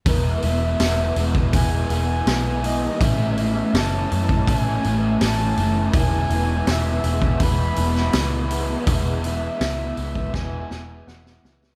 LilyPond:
<<
  \new Staff \with { instrumentName = "Soft synth lead" } { \time 4/4 \key e \major \tempo 4 = 82 r8 e''4 r8 gis''4. dis''8 | e''4 a''4 gis''4 a''8. r16 | gis''4 e''4 b''4. r8 | r8 e''4. gis''4 fis''8. r16 | }
  \new Staff \with { instrumentName = "Overdriven electric guitar" } { \time 4/4 \key e \major <e gis b e'>8 <gis b e'>8 <e gis b e'>8 <gis b e'>8 <e gis b e'>8 <gis b e'>8 <e gis b e'>8 <gis b e'>8 | <a, e a cis' e'>8 <a cis' e'>8 <e a cis' e'>8 <a cis' e'>8 <a, e a cis' e'>8 <a cis' e'>8 <e a cis' e'>8 <a cis' e'>8 | <e gis b e'>8 <gis b e'>8 <e gis b e'>8 <gis b e'>8 <e gis b e'>8 <gis b e'>8 <e gis b e'>8 <gis b e'>8 | <e gis b e'>8 <gis b e'>8 <e gis b e'>8 <gis b e'>8 <e gis b e'>8 <gis b e'>8 <e gis b e'>8 <gis b e'>8 | }
  \new Staff \with { instrumentName = "Picked electric bass" } { \clef bass \time 4/4 \key e \major e,,8 e,,8 e,,8 e,,8 e,,8 e,,8 b,,4 | a,,4 fis,,8 fis,8 a,,8 a,,8 a,,8 fis,,8 | e,,8 e,,8 e,,8 e,,8 e,,8 e,,8 cis,4 | e,,4 cis,8 cis,8 e,,8 e,,8 e,,8 cis,8 | }
  \new DrumStaff \with { instrumentName = "Drums" } \drummode { \time 4/4 <hho bd>8 hho8 <hho sn>8 hho16 bd16 <hho bd>8 hho8 <hho sn>8 hho8 | <hho bd>8 hho8 <hho sn>8 hho16 bd16 <hho bd>8 hho8 <hho sn>8 hho8 | <hho bd>8 hho8 <hho sn>8 hho16 bd16 <hho bd>8 hho16 sn16 <hho sn>8 hho8 | <hho bd>8 hho8 <hho sn>8 hho16 bd16 <bd sn>8 sn8 sn16 sn16 sn16 sn16 | }
>>